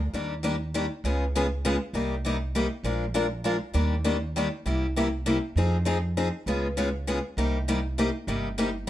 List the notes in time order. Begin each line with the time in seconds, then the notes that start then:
0.13 D#2 D#3 G3 A#3 D4 G4
0.43 D#3 G3 A#3 D4 G4
0.74 D#3 G3 A#3 D4 G4
1.04 C#2 C#3 G#3 B3 F4 G#4
1.35 C#3 G#3 B3 F4 G#4
1.65 C#3 G#3 B3 F4 G#4
1.93 C2 C3 G3 A#3 D#4 G4
2.25 C3 G3 A#3 D#4 G4
2.55 C3 G3 A#3 D#4 G4
2.83 A#1 F3 G#3 D4 F4 A#4
3.14 F3 G#3 D4 F4 A#4
3.44 F3 G#3 D4 F4 A#4
3.74 D#2 D#3 G3 A#3 D4 G4
4.04 D#3 G3 A#3 D4 G4
4.36 D#3 G3 A#3 D4 G4
4.66 C2 C3 G3 A#3 E4 G4
4.96 C3 G3 A#3 E4 G4
5.26 C3 G3 A#3 E4 G4
5.56 F2 F3 C4 D#4 G#4
5.85 F3 C4 D#4 G#4
6.17 F3 C4 D#4 G#4
6.46 C#2 C#3 G#3 B3 F4 G#4
6.77 C#3 G#3 B3 F4 G#4
7.07 C#3 G#3 B3 F4 G#4
7.37 C2 C3 G3 A#3 D#4 G4
7.68 C3 G3 A#3 D#4 G4
7.98 C3 G3 A#3 D#4 G4
8.27 G1 C3 G3 A#3 D#4 G4
8.58 C3 G3 A#3 D#4 G4